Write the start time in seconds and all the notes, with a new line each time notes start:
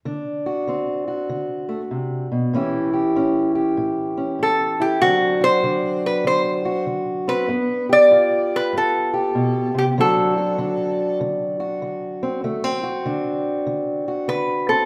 0.05 D3 D4
0.46 F#4
0.67 D3 C4
1.08 F#4
1.29 D3
1.69 A3
1.91 C3
2.32 B2
2.53 A2 E3 C#4 E4 G4
2.93 G4
3.16 A2 C#4
3.55 G4
3.77 A2
4.17 C#4
4.39 A2 A4
4.80 E4 G4
5.01 D3 F#3 C4 D4 F#4
5.41 F#4 C5
5.63 D3 D4
6.06 B4
6.24 D3 C5
6.65 F#4
6.87 D3
7.28 C4 B4
7.48 G2 B3
7.89 G4 D5
8.11 G2 F4
8.56 B4
8.73 G2
8.77 A4
9.14 G4
9.35 B2
9.74 C3
9.78 G4
9.98 D3 F#3 C4 D4 F#4 A4
10.38 F#4
10.58 D3 D4
11.21 D3
11.60 F#4
11.82 D3
12.23 C4
12.44 D3 A3
12.64 C4
12.83 F#4
13.06 D3 D4
13.66 D3
14.08 F#4
14.28 D3 B4
14.69 C4 A4